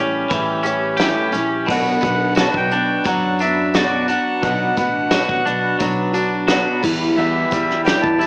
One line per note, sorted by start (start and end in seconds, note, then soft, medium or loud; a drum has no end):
0.00 0.24 A1 medium
0.00 0.64 A2 medium
0.00 0.30 G3 soft
0.00 0.98 G3 medium
0.00 0.31 C#4 medium
0.00 0.31 G4 medium
0.00 0.96 G4 medium
0.30 1.12 A1 loud
0.30 0.65 E3 medium
0.30 0.65 G3 medium
0.30 0.65 C#4 medium
0.30 kick loud
0.30 closed hi-hat medium
0.30 tambourine medium
0.35 0.63 G4 medium
0.63 1.00 C#4 medium
0.63 0.99 G4 medium
0.63 closed hi-hat medium
0.63 tambourine medium
0.68 1.00 G3 soft
0.97 1.34 A2 loud
0.97 1.34 E3 medium
0.97 1.67 G4 medium
0.97 snare loud
0.97 closed hi-hat loud
0.97 tambourine medium
1.01 1.34 G3 medium
1.01 1.33 C#4 medium
1.01 1.31 G4 medium
1.32 1.69 A#1 medium
1.32 1.69 G3 soft
1.32 1.68 C#4 medium
1.32 1.67 G4 medium
1.32 closed hi-hat medium
1.32 tambourine medium
1.66 1.95 B1 loud
1.66 2.03 B2 medium
1.66 kick loud
1.66 crash medium
1.66 tambourine soft
1.70 2.03 F#3 medium
1.70 2.04 B3 medium
1.70 2.03 D4 medium
1.70 2.01 F#4 medium
1.70 2.34 F#5 loud
2.01 2.43 B1 loud
2.01 4.77 B3 medium
2.01 2.37 D4 medium
2.01 2.37 F#4 soft
2.01 kick medium
2.01 closed hi-hat medium
2.01 tambourine medium
2.06 2.38 B3 soft
2.35 2.71 B2 medium
2.35 2.72 F#3 medium
2.35 snare loud
2.35 closed hi-hat loud
2.35 tambourine medium
2.39 2.72 B3 medium
2.39 2.72 D4 medium
2.39 2.72 F#4 medium
2.39 2.56 A5 loud
2.54 2.94 B1 medium
2.54 3.08 G5 loud
2.54 kick medium
2.69 3.06 D4 soft
2.69 closed hi-hat medium
2.69 tambourine soft
2.75 3.05 B3 soft
3.04 4.13 F#2 medium
3.04 3.39 F#3 medium
3.04 3.40 B3 medium
3.04 3.40 D4 medium
3.04 3.41 F#5 loud
3.04 kick loud
3.04 closed hi-hat medium
3.04 tambourine medium
3.09 3.39 F#4 medium
3.39 3.75 D4 medium
3.39 3.74 F#4 medium
3.39 3.75 E5 medium
3.39 closed hi-hat medium
3.39 tambourine medium
3.44 3.75 B3 soft
3.74 4.08 B2 medium
3.74 4.09 F#3 medium
3.74 4.09 B3 medium
3.74 4.09 D4 medium
3.74 4.07 F#4 medium
3.74 4.06 D5 medium
3.74 snare loud
3.74 closed hi-hat medium
3.74 tambourine medium
4.08 4.43 D4 soft
4.08 4.42 F#4 medium
4.08 4.78 F#5 loud
4.08 closed hi-hat medium
4.08 tambourine medium
4.12 4.44 B3 soft
4.43 4.69 B1 loud
4.43 4.78 B2 medium
4.43 4.78 F#3 medium
4.43 4.78 B3 medium
4.43 4.78 D4 medium
4.43 4.76 F#4 medium
4.43 kick loud
4.43 closed hi-hat loud
4.43 tambourine soft
4.77 5.17 A1 medium
4.77 5.11 B3 soft
4.77 5.11 D4 soft
4.77 5.11 F#4 medium
4.77 5.77 F#5 loud
4.77 kick medium
4.77 closed hi-hat medium
4.77 tambourine medium
5.11 5.45 B2 medium
5.11 5.46 F#3 medium
5.11 5.46 B3 medium
5.11 5.46 D4 medium
5.11 5.45 F#4 medium
5.11 snare loud
5.11 closed hi-hat loud
5.11 tambourine medium
5.29 5.42 A1 medium
5.29 kick medium
5.45 5.72 B1 medium
5.45 5.81 D4 soft
5.45 5.80 F#4 medium
5.45 closed hi-hat medium
5.45 tambourine soft
5.50 5.79 B3 soft
5.80 6.62 B1 loud
5.80 6.14 F#3 medium
5.80 6.14 B3 medium
5.80 6.15 D4 medium
5.80 6.12 F#4 medium
5.80 kick loud
5.80 closed hi-hat loud
5.80 tambourine medium
6.13 6.49 B3 soft
6.13 6.49 D4 medium
6.13 6.48 F#4 medium
6.13 closed hi-hat medium
6.13 tambourine medium
6.48 6.83 B2 medium
6.48 6.83 F#3 medium
6.48 6.84 B3 medium
6.48 6.83 D4 medium
6.48 6.82 F#4 loud
6.48 snare loud
6.48 closed hi-hat loud
6.48 tambourine medium
6.82 7.17 E2 medium
6.82 7.10 E2 medium
6.82 7.17 E3 soft
6.82 7.18 G3 medium
6.82 7.17 E4 medium
6.82 7.17 G4 medium
6.82 kick loud
6.82 tambourine medium
6.82 crash medium
7.16 7.43 E2 loud
7.16 7.51 E2 medium
7.16 7.52 B2 medium
7.16 7.52 E3 medium
7.16 7.52 G3 medium
7.16 7.51 E4 medium
7.16 7.81 E5 medium
7.16 tambourine soft
7.20 7.50 G4 medium
7.51 7.92 E2 loud
7.51 7.86 E3 soft
7.51 7.85 G3 soft
7.51 7.86 E4 medium
7.51 7.86 G4 medium
7.51 kick medium
7.51 closed hi-hat medium
7.51 tambourine medium
7.70 snare soft
7.85 8.19 E2 medium
7.85 8.20 B2 medium
7.85 8.21 E3 medium
7.85 8.20 G3 medium
7.85 8.19 E4 medium
7.85 8.17 G4 medium
7.85 8.01 G5 loud
7.85 snare loud
7.85 closed hi-hat loud
7.85 tambourine medium
8.02 8.27 E2 medium
8.02 8.27 A5 loud
8.02 kick medium
8.18 8.27 E3 soft
8.18 8.27 G3 soft
8.18 8.27 E4 soft
8.18 8.27 G4 medium
8.18 closed hi-hat medium
8.18 tambourine soft